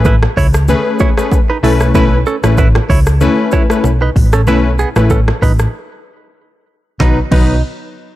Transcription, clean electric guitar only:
0, 0, Header, 1, 2, 480
1, 0, Start_track
1, 0, Tempo, 631579
1, 1480, Time_signature, 4, 2, 24, 8
1, 6200, End_track
2, 0, Start_track
2, 0, Title_t, "Clean electric guitar"
2, 0, Program_c, 0, 27
2, 44, Note_on_c, 0, 71, 87
2, 51, Note_on_c, 0, 64, 67
2, 110, Note_off_c, 0, 71, 0
2, 115, Note_off_c, 0, 64, 0
2, 284, Note_on_c, 0, 73, 82
2, 290, Note_on_c, 0, 64, 65
2, 350, Note_off_c, 0, 73, 0
2, 354, Note_off_c, 0, 64, 0
2, 764, Note_on_c, 0, 73, 78
2, 771, Note_on_c, 0, 64, 61
2, 830, Note_off_c, 0, 73, 0
2, 835, Note_off_c, 0, 64, 0
2, 1137, Note_on_c, 0, 71, 72
2, 1143, Note_on_c, 0, 63, 57
2, 1191, Note_off_c, 0, 71, 0
2, 1195, Note_off_c, 0, 63, 0
2, 1245, Note_on_c, 0, 69, 83
2, 1251, Note_on_c, 0, 61, 64
2, 1311, Note_off_c, 0, 69, 0
2, 1315, Note_off_c, 0, 61, 0
2, 1484, Note_on_c, 0, 71, 94
2, 1490, Note_on_c, 0, 64, 78
2, 1550, Note_off_c, 0, 71, 0
2, 1554, Note_off_c, 0, 64, 0
2, 1724, Note_on_c, 0, 69, 83
2, 1730, Note_on_c, 0, 61, 60
2, 1789, Note_off_c, 0, 69, 0
2, 1794, Note_off_c, 0, 61, 0
2, 1963, Note_on_c, 0, 71, 79
2, 1970, Note_on_c, 0, 64, 65
2, 2029, Note_off_c, 0, 71, 0
2, 2034, Note_off_c, 0, 64, 0
2, 2202, Note_on_c, 0, 73, 81
2, 2209, Note_on_c, 0, 64, 66
2, 2269, Note_off_c, 0, 73, 0
2, 2273, Note_off_c, 0, 64, 0
2, 2682, Note_on_c, 0, 73, 80
2, 2688, Note_on_c, 0, 64, 63
2, 2748, Note_off_c, 0, 73, 0
2, 2753, Note_off_c, 0, 64, 0
2, 3054, Note_on_c, 0, 71, 76
2, 3060, Note_on_c, 0, 63, 57
2, 3108, Note_off_c, 0, 71, 0
2, 3112, Note_off_c, 0, 63, 0
2, 3294, Note_on_c, 0, 69, 73
2, 3299, Note_on_c, 0, 61, 56
2, 3348, Note_off_c, 0, 69, 0
2, 3352, Note_off_c, 0, 61, 0
2, 3402, Note_on_c, 0, 71, 113
2, 3408, Note_on_c, 0, 64, 90
2, 3468, Note_off_c, 0, 71, 0
2, 3473, Note_off_c, 0, 64, 0
2, 3642, Note_on_c, 0, 68, 77
2, 3649, Note_on_c, 0, 59, 61
2, 3708, Note_off_c, 0, 68, 0
2, 3713, Note_off_c, 0, 59, 0
2, 3883, Note_on_c, 0, 69, 89
2, 3888, Note_on_c, 0, 61, 68
2, 3949, Note_off_c, 0, 69, 0
2, 3953, Note_off_c, 0, 61, 0
2, 4123, Note_on_c, 0, 71, 85
2, 4128, Note_on_c, 0, 63, 67
2, 4189, Note_off_c, 0, 71, 0
2, 4193, Note_off_c, 0, 63, 0
2, 5324, Note_on_c, 0, 63, 87
2, 5465, Note_off_c, 0, 63, 0
2, 5564, Note_on_c, 0, 63, 85
2, 5785, Note_off_c, 0, 63, 0
2, 6200, End_track
0, 0, End_of_file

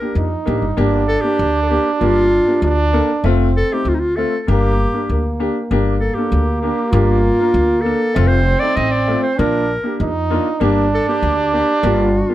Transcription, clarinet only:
0, 0, Header, 1, 2, 480
1, 0, Start_track
1, 0, Key_signature, -2, "minor"
1, 0, Tempo, 614125
1, 614, Time_signature, 2, 2, 24, 8
1, 9650, End_track
2, 0, Start_track
2, 0, Title_t, "Clarinet"
2, 0, Program_c, 0, 71
2, 0, Note_on_c, 0, 70, 98
2, 140, Note_off_c, 0, 70, 0
2, 845, Note_on_c, 0, 69, 104
2, 945, Note_on_c, 0, 67, 92
2, 957, Note_off_c, 0, 69, 0
2, 1264, Note_off_c, 0, 67, 0
2, 1269, Note_on_c, 0, 69, 61
2, 1311, Note_on_c, 0, 67, 86
2, 1323, Note_off_c, 0, 69, 0
2, 1509, Note_off_c, 0, 67, 0
2, 1513, Note_on_c, 0, 67, 50
2, 1556, Note_on_c, 0, 65, 100
2, 1568, Note_off_c, 0, 67, 0
2, 2288, Note_off_c, 0, 65, 0
2, 2788, Note_on_c, 0, 69, 101
2, 2914, Note_on_c, 0, 67, 85
2, 2926, Note_off_c, 0, 69, 0
2, 3032, Note_on_c, 0, 65, 91
2, 3044, Note_off_c, 0, 67, 0
2, 3083, Note_on_c, 0, 63, 67
2, 3095, Note_off_c, 0, 65, 0
2, 3122, Note_on_c, 0, 65, 84
2, 3133, Note_off_c, 0, 63, 0
2, 3249, Note_on_c, 0, 69, 94
2, 3261, Note_off_c, 0, 65, 0
2, 3445, Note_off_c, 0, 69, 0
2, 3445, Note_on_c, 0, 69, 56
2, 3510, Note_on_c, 0, 67, 85
2, 3522, Note_off_c, 0, 69, 0
2, 4224, Note_off_c, 0, 67, 0
2, 4690, Note_on_c, 0, 69, 85
2, 4801, Note_on_c, 0, 67, 78
2, 4813, Note_off_c, 0, 69, 0
2, 5161, Note_off_c, 0, 67, 0
2, 5166, Note_on_c, 0, 67, 76
2, 5400, Note_on_c, 0, 65, 94
2, 5411, Note_off_c, 0, 67, 0
2, 6105, Note_on_c, 0, 69, 104
2, 6117, Note_off_c, 0, 65, 0
2, 6468, Note_on_c, 0, 72, 100
2, 6480, Note_off_c, 0, 69, 0
2, 6718, Note_on_c, 0, 74, 99
2, 6730, Note_off_c, 0, 72, 0
2, 6846, Note_on_c, 0, 75, 101
2, 6858, Note_off_c, 0, 74, 0
2, 6966, Note_on_c, 0, 74, 89
2, 6978, Note_off_c, 0, 75, 0
2, 7210, Note_off_c, 0, 74, 0
2, 7214, Note_on_c, 0, 72, 86
2, 7335, Note_on_c, 0, 70, 104
2, 7347, Note_off_c, 0, 72, 0
2, 7814, Note_off_c, 0, 70, 0
2, 8554, Note_on_c, 0, 69, 95
2, 8656, Note_off_c, 0, 69, 0
2, 8665, Note_on_c, 0, 67, 89
2, 8995, Note_off_c, 0, 67, 0
2, 9022, Note_on_c, 0, 67, 86
2, 9274, Note_on_c, 0, 65, 81
2, 9285, Note_off_c, 0, 67, 0
2, 9650, Note_off_c, 0, 65, 0
2, 9650, End_track
0, 0, End_of_file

